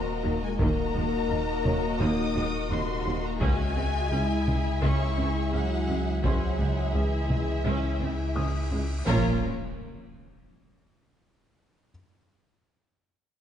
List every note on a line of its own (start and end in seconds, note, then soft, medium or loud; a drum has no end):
0.00 0.59 D#1 medium
0.00 0.11 A#3 medium
0.00 0.42 A#3 medium
0.00 0.56 A#3 medium
0.00 0.58 D#4 medium
0.00 0.56 F#4 medium
0.00 0.55 A#4 medium
0.00 0.56 A#4 medium
0.00 0.56 D#5 medium
0.00 0.55 F#5 medium
0.00 0.42 A#5 medium
0.00 1.26 A#5 medium
0.23 0.33 D#2 medium
0.23 0.31 F#3 medium
0.23 0.45 D#4 medium
0.42 0.60 G#3 medium
0.42 0.60 G#5 medium
0.59 3.43 D#1 medium
0.59 0.68 D#2 medium
0.59 0.68 D#2 loud
0.59 0.80 D#3 loud
0.59 0.92 A#3 medium
0.59 3.38 A#3 medium
0.59 1.98 A#3 loud
0.59 3.38 D#4 medium
0.59 4.08 F#4 medium
0.59 3.38 A#4 medium
0.59 3.38 D#5 medium
0.59 3.38 F#5 medium
0.59 1.98 A#5 loud
0.59 taiko loud
0.94 1.03 D#2 medium
0.94 1.03 G#3 medium
0.94 1.16 A#3 medium
1.30 1.38 D#2 medium
1.30 1.51 A#3 medium
1.30 1.39 A#3 soft
1.64 1.73 D#2 medium
1.64 1.74 D#2 medium
1.64 1.72 F#3 medium
1.64 1.86 D#4 medium
1.64 3.73 C#5 medium
1.64 taiko mid medium
2.00 2.08 D#2 medium
2.00 2.09 D#2 medium
2.00 2.22 D#3 medium
2.00 2.33 A#3 medium
2.00 2.71 D#4 loud
2.00 2.71 D#6 loud
2.36 2.44 D#2 medium
2.36 2.44 G#3 medium
2.36 2.57 D#4 medium
2.70 2.78 D#2 medium
2.70 2.79 D#2 medium
2.70 3.24 C3 loud
2.70 2.79 A#3 medium
2.70 2.92 A#3 medium
2.70 3.24 C6 loud
3.06 3.14 D#2 medium
3.06 3.15 D#2 medium
3.06 3.14 F#3 medium
3.06 3.28 D#4 medium
3.23 3.41 A#3 medium
3.23 3.42 A#5 medium
3.41 3.49 C#2 medium
3.41 6.23 C#2 medium
3.41 3.50 C#2 loud
3.41 3.63 C#3 loud
3.41 6.24 C#3 medium
3.41 4.65 G#3 loud
3.41 6.24 G#3 medium
3.41 3.74 C#4 medium
3.41 6.20 G#4 medium
3.41 6.23 G#4 medium
3.41 6.20 E5 medium
3.41 6.23 E5 medium
3.41 4.83 G#5 loud
3.41 taiko loud
3.76 3.84 C#2 medium
3.76 3.85 C#2 medium
3.76 3.98 G#3 medium
3.76 3.85 C4 medium
4.12 4.20 C#2 medium
4.12 4.21 C#2 medium
4.12 4.34 G#3 medium
4.12 4.20 C#4 medium
4.12 6.22 E4 medium
4.47 4.55 C#2 medium
4.47 4.56 C#2 medium
4.47 4.55 G#3 medium
4.47 4.69 C#4 medium
4.47 taiko mid medium
4.82 4.90 C#2 medium
4.82 4.91 C#2 medium
4.82 5.52 C#3 medium
4.82 5.04 C#3 medium
4.82 5.15 C#4 medium
4.82 5.52 C#6 medium
5.17 5.25 C#2 medium
5.17 5.26 C#2 medium
5.17 5.26 C4 medium
5.17 5.39 C#4 medium
5.52 5.61 C#2 medium
5.52 6.22 F#3 medium
5.52 5.75 G#3 medium
5.52 5.61 C#4 medium
5.52 6.23 F#5 medium
5.88 5.97 C#2 medium
5.88 5.97 G#3 medium
5.88 6.10 C#4 medium
6.23 6.31 C#2 medium
6.23 9.02 C#2 medium
6.23 6.32 C#2 medium
6.23 6.45 C#3 medium
6.23 9.03 C#3 medium
6.23 6.93 F#3 medium
6.23 9.03 G#3 medium
6.23 6.57 C#4 medium
6.23 8.82 E4 medium
6.23 8.83 G#4 medium
6.23 9.03 G#4 medium
6.23 8.33 C5 soft
6.23 8.83 E5 medium
6.23 9.03 E5 medium
6.23 6.93 F#5 medium
6.23 8.33 C6 medium
6.23 taiko loud
6.23 cymbal swell medium
6.59 6.67 C#2 medium
6.59 6.80 G#3 medium
6.59 6.67 C4 soft
6.94 7.02 C#2 medium
6.94 8.71 E3 medium
6.94 7.16 G#3 medium
6.94 7.03 C#4 soft
6.94 8.71 E5 medium
7.30 7.38 C#2 medium
7.30 7.38 G#3 medium
7.30 7.51 C#4 medium
7.30 taiko mid medium
7.65 7.73 C#2 medium
7.65 7.87 C#3 medium
7.65 7.98 C#4 medium
8.00 8.09 C#2 medium
8.00 8.08 C4 medium
8.00 8.22 C#4 medium
8.36 8.44 C#2 medium
8.36 8.58 G#3 medium
8.36 8.45 C#4 medium
8.36 9.03 D#6 medium
8.71 8.79 C#2 medium
8.71 8.81 C#2 medium
8.71 8.80 G#3 medium
8.71 8.93 C#4 medium
9.06 9.46 A#1 loud
9.06 9.46 A#2 loud
9.06 9.38 A#3 medium
9.06 9.46 A#3 medium
9.06 9.46 C#4 medium
9.06 9.47 C#4 medium
9.06 9.46 F4 medium
9.06 9.46 A#4 medium
9.06 9.46 C#5 loud
9.06 9.46 C#5 medium
9.06 9.47 F5 medium
9.06 9.46 A#5 medium
9.06 impact medium